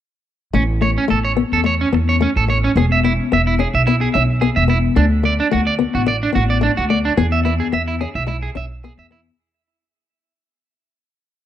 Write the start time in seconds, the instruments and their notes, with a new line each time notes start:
0.53 upright bass A1, steel-string acoustic guitar A3, clean electric guitar C#4
0.81 steel-string acoustic guitar A3, clean electric guitar C#5
0.98 clean electric guitar C#4
1.08 upright bass A1, steel-string acoustic guitar A3, clean electric guitar A4
1.25 clean electric guitar C#5
1.37 steel-string acoustic guitar B3
1.52 upright bass E2, clean electric guitar A4
1.64 steel-string acoustic guitar A3, clean electric guitar C#5
1.81 clean electric guitar C#4
1.93 upright bass E2, steel-string acoustic guitar B3, muted clean electric guitar stroke
2.09 clean electric guitar C#5
2.21 steel-string acoustic guitar A3, clean electric guitar C#4
2.36 upright bass A1, clean electric guitar A4
2.48 steel-string acoustic guitar A3, clean electric guitar C#5
2.64 clean electric guitar C#4
2.76 upright bass E1, steel-string acoustic guitar B3, clean electric guitar G#4
2.92 clean electric guitar E5
3.04 steel-string acoustic guitar B3, clean electric guitar E4
3.32 upright bass E1, steel-string acoustic guitar B3, clean electric guitar E5
3.47 clean electric guitar E4
3.59 steel-string acoustic guitar C#4, clean electric guitar G#4
3.74 upright bass B1, clean electric guitar E5
3.87 steel-string acoustic guitar B3, clean electric guitar E4
4.01 clean electric guitar G#4
4.14 upright bass B1, steel-string acoustic guitar C#4, clean electric guitar E5
4.41 steel-string acoustic guitar B3, clean electric guitar G#4
4.56 upright bass E1, clean electric guitar E5
4.68 steel-string acoustic guitar B3, clean electric guitar E4
4.96 upright bass D2, steel-string acoustic guitar A3, clean electric guitar D4
5.23 steel-string acoustic guitar A3, clean electric guitar D5
5.40 clean electric guitar D4
5.51 upright bass D2, steel-string acoustic guitar A3, clean electric guitar F#4
5.67 clean electric guitar D5
5.79 steel-string acoustic guitar B3
5.95 upright bass A1, clean electric guitar F#4
6.06 clean electric guitar D5, muted steel-string acoustic guitar stroke
6.23 clean electric guitar D4
6.33 upright bass A1, steel-string acoustic guitar B3, clean electric guitar F#4
6.50 clean electric guitar D5
6.61 steel-string acoustic guitar A3, clean electric guitar D4
6.77 upright bass D2, clean electric guitar F#4
6.90 steel-string acoustic guitar A3, clean electric guitar D5
7.05 clean electric guitar D4
7.17 upright bass E2, steel-string acoustic guitar B3, clean electric guitar G#4
7.32 clean electric guitar E5
7.45 steel-string acoustic guitar B3, clean electric guitar E4
7.60 clean electric guitar G#4
7.73 upright bass E2, steel-string acoustic guitar B3, clean electric guitar E5
7.88 clean electric guitar E4
8.01 steel-string acoustic guitar C#4, clean electric guitar G#4
8.15 upright bass B1, clean electric guitar E5
8.27 steel-string acoustic guitar G#3, clean electric guitar E4
8.43 clean electric guitar G#4
8.55 upright bass B1, steel-string acoustic guitar C#4, clean electric guitar E5
8.84 steel-string acoustic guitar B3, clean electric guitar G#4
8.98 upright bass E2, clean electric guitar E5
9.11 steel-string acoustic guitar B3, clean electric guitar E4